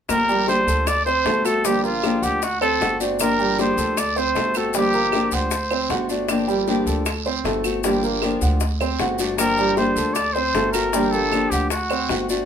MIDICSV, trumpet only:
0, 0, Header, 1, 2, 480
1, 0, Start_track
1, 0, Key_signature, -2, "minor"
1, 0, Tempo, 387097
1, 118, Time_signature, 4, 2, 24, 8
1, 15440, End_track
2, 0, Start_track
2, 0, Title_t, "Trumpet"
2, 0, Program_c, 0, 56
2, 123, Note_on_c, 0, 70, 104
2, 568, Note_off_c, 0, 70, 0
2, 601, Note_on_c, 0, 72, 93
2, 1084, Note_on_c, 0, 74, 91
2, 1103, Note_off_c, 0, 72, 0
2, 1306, Note_off_c, 0, 74, 0
2, 1313, Note_on_c, 0, 72, 102
2, 1801, Note_on_c, 0, 69, 86
2, 1820, Note_off_c, 0, 72, 0
2, 2047, Note_on_c, 0, 67, 92
2, 2066, Note_off_c, 0, 69, 0
2, 2278, Note_off_c, 0, 67, 0
2, 2285, Note_on_c, 0, 65, 87
2, 2768, Note_on_c, 0, 67, 87
2, 2787, Note_off_c, 0, 65, 0
2, 3016, Note_on_c, 0, 66, 86
2, 3034, Note_off_c, 0, 67, 0
2, 3234, Note_off_c, 0, 66, 0
2, 3242, Note_on_c, 0, 69, 98
2, 3689, Note_off_c, 0, 69, 0
2, 3974, Note_on_c, 0, 70, 97
2, 4416, Note_off_c, 0, 70, 0
2, 4465, Note_on_c, 0, 72, 84
2, 4942, Note_on_c, 0, 74, 93
2, 4960, Note_off_c, 0, 72, 0
2, 5181, Note_on_c, 0, 72, 94
2, 5199, Note_off_c, 0, 74, 0
2, 5668, Note_on_c, 0, 69, 82
2, 5686, Note_off_c, 0, 72, 0
2, 5891, Note_off_c, 0, 69, 0
2, 5898, Note_on_c, 0, 67, 93
2, 6621, Note_on_c, 0, 72, 84
2, 6640, Note_off_c, 0, 67, 0
2, 7571, Note_off_c, 0, 72, 0
2, 11637, Note_on_c, 0, 70, 109
2, 12084, Note_off_c, 0, 70, 0
2, 12112, Note_on_c, 0, 72, 86
2, 12569, Note_on_c, 0, 74, 91
2, 12588, Note_off_c, 0, 72, 0
2, 12813, Note_on_c, 0, 72, 102
2, 12832, Note_off_c, 0, 74, 0
2, 13282, Note_off_c, 0, 72, 0
2, 13290, Note_on_c, 0, 70, 85
2, 13776, Note_on_c, 0, 69, 94
2, 13794, Note_off_c, 0, 70, 0
2, 14264, Note_on_c, 0, 67, 83
2, 14283, Note_off_c, 0, 69, 0
2, 14511, Note_off_c, 0, 67, 0
2, 14516, Note_on_c, 0, 66, 73
2, 15187, Note_off_c, 0, 66, 0
2, 15440, End_track
0, 0, End_of_file